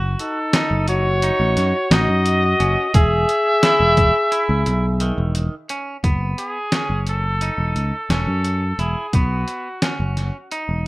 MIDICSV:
0, 0, Header, 1, 6, 480
1, 0, Start_track
1, 0, Tempo, 688073
1, 2056, Time_signature, 9, 3, 24, 8
1, 7585, End_track
2, 0, Start_track
2, 0, Title_t, "Trumpet"
2, 0, Program_c, 0, 56
2, 143, Note_on_c, 0, 69, 86
2, 592, Note_off_c, 0, 69, 0
2, 619, Note_on_c, 0, 73, 100
2, 1340, Note_on_c, 0, 75, 103
2, 1350, Note_off_c, 0, 73, 0
2, 2057, Note_off_c, 0, 75, 0
2, 2065, Note_on_c, 0, 76, 116
2, 3711, Note_off_c, 0, 76, 0
2, 4453, Note_on_c, 0, 68, 94
2, 4906, Note_off_c, 0, 68, 0
2, 4943, Note_on_c, 0, 69, 95
2, 5632, Note_off_c, 0, 69, 0
2, 5662, Note_on_c, 0, 69, 91
2, 6141, Note_on_c, 0, 68, 77
2, 6152, Note_off_c, 0, 69, 0
2, 6385, Note_on_c, 0, 66, 81
2, 6395, Note_off_c, 0, 68, 0
2, 7343, Note_off_c, 0, 66, 0
2, 7585, End_track
3, 0, Start_track
3, 0, Title_t, "Flugelhorn"
3, 0, Program_c, 1, 56
3, 140, Note_on_c, 1, 63, 63
3, 590, Note_off_c, 1, 63, 0
3, 616, Note_on_c, 1, 66, 76
3, 1336, Note_off_c, 1, 66, 0
3, 1336, Note_on_c, 1, 66, 83
3, 2050, Note_off_c, 1, 66, 0
3, 2054, Note_on_c, 1, 68, 87
3, 3705, Note_off_c, 1, 68, 0
3, 7585, End_track
4, 0, Start_track
4, 0, Title_t, "Clean electric guitar"
4, 0, Program_c, 2, 27
4, 0, Note_on_c, 2, 66, 80
4, 267, Note_off_c, 2, 66, 0
4, 377, Note_on_c, 2, 63, 83
4, 747, Note_off_c, 2, 63, 0
4, 860, Note_on_c, 2, 63, 79
4, 1229, Note_off_c, 2, 63, 0
4, 1338, Note_on_c, 2, 63, 80
4, 1707, Note_off_c, 2, 63, 0
4, 1813, Note_on_c, 2, 61, 74
4, 1999, Note_off_c, 2, 61, 0
4, 2053, Note_on_c, 2, 68, 86
4, 2424, Note_off_c, 2, 68, 0
4, 2533, Note_on_c, 2, 64, 82
4, 2903, Note_off_c, 2, 64, 0
4, 3012, Note_on_c, 2, 64, 80
4, 3383, Note_off_c, 2, 64, 0
4, 3496, Note_on_c, 2, 51, 77
4, 3865, Note_off_c, 2, 51, 0
4, 3976, Note_on_c, 2, 61, 68
4, 4160, Note_off_c, 2, 61, 0
4, 4214, Note_on_c, 2, 59, 70
4, 4584, Note_off_c, 2, 59, 0
4, 4693, Note_on_c, 2, 61, 68
4, 5064, Note_off_c, 2, 61, 0
4, 5175, Note_on_c, 2, 63, 68
4, 5546, Note_off_c, 2, 63, 0
4, 5654, Note_on_c, 2, 61, 71
4, 6025, Note_off_c, 2, 61, 0
4, 6134, Note_on_c, 2, 64, 62
4, 6320, Note_off_c, 2, 64, 0
4, 6380, Note_on_c, 2, 59, 75
4, 6750, Note_off_c, 2, 59, 0
4, 6857, Note_on_c, 2, 61, 70
4, 7228, Note_off_c, 2, 61, 0
4, 7337, Note_on_c, 2, 63, 80
4, 7585, Note_off_c, 2, 63, 0
4, 7585, End_track
5, 0, Start_track
5, 0, Title_t, "Picked electric bass"
5, 0, Program_c, 3, 34
5, 0, Note_on_c, 3, 30, 81
5, 102, Note_off_c, 3, 30, 0
5, 495, Note_on_c, 3, 30, 77
5, 907, Note_off_c, 3, 30, 0
5, 975, Note_on_c, 3, 33, 78
5, 1078, Note_off_c, 3, 33, 0
5, 1093, Note_on_c, 3, 42, 77
5, 1198, Note_off_c, 3, 42, 0
5, 1332, Note_on_c, 3, 33, 91
5, 1436, Note_off_c, 3, 33, 0
5, 1457, Note_on_c, 3, 42, 76
5, 1765, Note_off_c, 3, 42, 0
5, 1816, Note_on_c, 3, 30, 82
5, 1918, Note_off_c, 3, 30, 0
5, 2053, Note_on_c, 3, 28, 91
5, 2260, Note_off_c, 3, 28, 0
5, 2653, Note_on_c, 3, 28, 90
5, 2859, Note_off_c, 3, 28, 0
5, 3134, Note_on_c, 3, 37, 83
5, 3237, Note_off_c, 3, 37, 0
5, 3253, Note_on_c, 3, 35, 90
5, 3562, Note_off_c, 3, 35, 0
5, 3613, Note_on_c, 3, 28, 88
5, 3819, Note_off_c, 3, 28, 0
5, 4211, Note_on_c, 3, 30, 80
5, 4418, Note_off_c, 3, 30, 0
5, 4812, Note_on_c, 3, 30, 70
5, 5225, Note_off_c, 3, 30, 0
5, 5288, Note_on_c, 3, 28, 78
5, 5394, Note_off_c, 3, 28, 0
5, 5412, Note_on_c, 3, 37, 67
5, 5516, Note_off_c, 3, 37, 0
5, 5649, Note_on_c, 3, 28, 92
5, 5755, Note_off_c, 3, 28, 0
5, 5772, Note_on_c, 3, 42, 69
5, 6082, Note_off_c, 3, 42, 0
5, 6130, Note_on_c, 3, 28, 76
5, 6236, Note_off_c, 3, 28, 0
5, 6372, Note_on_c, 3, 35, 80
5, 6580, Note_off_c, 3, 35, 0
5, 6975, Note_on_c, 3, 30, 80
5, 7183, Note_off_c, 3, 30, 0
5, 7456, Note_on_c, 3, 28, 77
5, 7560, Note_off_c, 3, 28, 0
5, 7585, End_track
6, 0, Start_track
6, 0, Title_t, "Drums"
6, 136, Note_on_c, 9, 42, 64
6, 205, Note_off_c, 9, 42, 0
6, 372, Note_on_c, 9, 38, 114
6, 372, Note_on_c, 9, 42, 85
6, 442, Note_off_c, 9, 38, 0
6, 442, Note_off_c, 9, 42, 0
6, 611, Note_on_c, 9, 42, 58
6, 681, Note_off_c, 9, 42, 0
6, 854, Note_on_c, 9, 42, 75
6, 924, Note_off_c, 9, 42, 0
6, 1094, Note_on_c, 9, 38, 35
6, 1094, Note_on_c, 9, 42, 65
6, 1164, Note_off_c, 9, 38, 0
6, 1164, Note_off_c, 9, 42, 0
6, 1335, Note_on_c, 9, 38, 106
6, 1335, Note_on_c, 9, 42, 80
6, 1404, Note_off_c, 9, 38, 0
6, 1404, Note_off_c, 9, 42, 0
6, 1574, Note_on_c, 9, 42, 66
6, 1643, Note_off_c, 9, 42, 0
6, 1814, Note_on_c, 9, 42, 59
6, 1884, Note_off_c, 9, 42, 0
6, 2053, Note_on_c, 9, 36, 99
6, 2053, Note_on_c, 9, 42, 82
6, 2122, Note_off_c, 9, 42, 0
6, 2123, Note_off_c, 9, 36, 0
6, 2294, Note_on_c, 9, 42, 65
6, 2364, Note_off_c, 9, 42, 0
6, 2532, Note_on_c, 9, 38, 104
6, 2532, Note_on_c, 9, 42, 85
6, 2602, Note_off_c, 9, 38, 0
6, 2602, Note_off_c, 9, 42, 0
6, 2770, Note_on_c, 9, 42, 53
6, 2773, Note_on_c, 9, 36, 70
6, 2840, Note_off_c, 9, 42, 0
6, 2843, Note_off_c, 9, 36, 0
6, 3013, Note_on_c, 9, 42, 75
6, 3083, Note_off_c, 9, 42, 0
6, 3252, Note_on_c, 9, 42, 56
6, 3322, Note_off_c, 9, 42, 0
6, 3489, Note_on_c, 9, 42, 74
6, 3559, Note_off_c, 9, 42, 0
6, 3731, Note_on_c, 9, 42, 62
6, 3801, Note_off_c, 9, 42, 0
6, 3972, Note_on_c, 9, 42, 62
6, 4041, Note_off_c, 9, 42, 0
6, 4212, Note_on_c, 9, 36, 93
6, 4213, Note_on_c, 9, 42, 68
6, 4282, Note_off_c, 9, 36, 0
6, 4283, Note_off_c, 9, 42, 0
6, 4452, Note_on_c, 9, 42, 60
6, 4522, Note_off_c, 9, 42, 0
6, 4688, Note_on_c, 9, 38, 101
6, 4688, Note_on_c, 9, 42, 72
6, 4758, Note_off_c, 9, 38, 0
6, 4758, Note_off_c, 9, 42, 0
6, 4929, Note_on_c, 9, 42, 56
6, 4999, Note_off_c, 9, 42, 0
6, 5170, Note_on_c, 9, 42, 68
6, 5240, Note_off_c, 9, 42, 0
6, 5412, Note_on_c, 9, 42, 56
6, 5482, Note_off_c, 9, 42, 0
6, 5652, Note_on_c, 9, 38, 87
6, 5652, Note_on_c, 9, 42, 67
6, 5721, Note_off_c, 9, 38, 0
6, 5721, Note_off_c, 9, 42, 0
6, 5891, Note_on_c, 9, 42, 58
6, 5961, Note_off_c, 9, 42, 0
6, 6131, Note_on_c, 9, 42, 51
6, 6201, Note_off_c, 9, 42, 0
6, 6371, Note_on_c, 9, 42, 69
6, 6372, Note_on_c, 9, 36, 97
6, 6441, Note_off_c, 9, 42, 0
6, 6442, Note_off_c, 9, 36, 0
6, 6611, Note_on_c, 9, 42, 53
6, 6681, Note_off_c, 9, 42, 0
6, 6851, Note_on_c, 9, 38, 99
6, 6851, Note_on_c, 9, 42, 76
6, 6921, Note_off_c, 9, 38, 0
6, 6921, Note_off_c, 9, 42, 0
6, 7095, Note_on_c, 9, 38, 29
6, 7095, Note_on_c, 9, 42, 52
6, 7164, Note_off_c, 9, 38, 0
6, 7164, Note_off_c, 9, 42, 0
6, 7335, Note_on_c, 9, 42, 66
6, 7405, Note_off_c, 9, 42, 0
6, 7585, End_track
0, 0, End_of_file